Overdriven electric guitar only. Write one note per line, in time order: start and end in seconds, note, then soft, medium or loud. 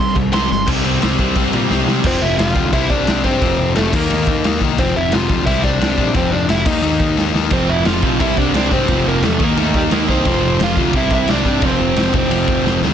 0.00 0.15 C6 loud
0.34 0.50 C6 loud
0.52 0.68 C6 loud
2.07 2.22 C4 medium
2.07 2.23 C5 loud
2.22 2.38 E4 medium
2.22 2.38 E5 loud
2.38 2.71 F4 medium
2.38 2.73 F5 loud
2.74 2.90 E4 medium
2.74 2.89 E5 loud
2.90 3.22 D4 medium
2.90 3.25 D5 loud
3.24 3.73 C4 medium
3.24 3.72 C5 loud
3.76 3.92 A3 medium
3.76 3.92 A4 medium
3.95 4.58 A#3 medium
3.95 4.58 A#4 medium
4.79 4.95 C4 medium
4.79 4.95 C5 loud
4.96 5.12 E4 medium
4.96 5.13 E5 loud
5.13 5.46 F4 medium
5.13 5.46 F5 loud
5.46 5.63 E4 medium
5.46 5.64 E5 loud
5.64 6.12 D4 medium
5.64 6.12 D5 loud
6.16 6.32 C4 medium
6.16 6.32 C5 medium
6.32 6.48 D4 medium
6.32 6.50 D5 medium
6.50 6.66 E4 medium
6.50 6.67 E5 loud
6.66 7.31 D#4 medium
6.66 7.35 D#5 medium
7.53 7.69 C4 medium
7.53 7.70 C5 loud
7.69 7.85 E4 medium
7.69 7.86 E5 loud
7.86 8.18 F4 medium
7.86 8.20 F5 medium
8.21 8.36 E4 medium
8.21 8.38 E5 loud
8.37 8.53 D4 medium
8.37 8.54 D5 loud
8.56 8.71 D4 medium
8.56 8.73 D5 medium
8.73 9.04 C4 medium
8.73 9.08 C5 loud
9.07 9.22 A#3 medium
9.07 9.25 A#4 loud
9.24 9.39 A3 medium
9.24 9.44 A4 medium
9.44 9.58 A#3 medium
9.44 9.60 A#4 medium
9.59 9.74 A3 medium
9.59 9.75 A4 medium
9.76 9.81 G3 medium
9.76 9.82 G4 medium
9.92 10.07 A#3 medium
9.92 10.10 A#4 loud
10.09 10.57 C4 medium
10.09 10.62 C5 loud
10.63 10.93 F4 medium
10.63 10.94 F5 loud
10.97 11.11 E4 medium
10.97 11.13 E5 medium
11.13 11.28 E4 medium
11.13 11.30 E5 loud
11.31 11.62 D4 medium
11.31 11.66 D5 loud
11.65 12.12 C4 medium
11.65 12.13 C5 medium
12.15 12.79 C4 medium
12.15 12.80 C5 medium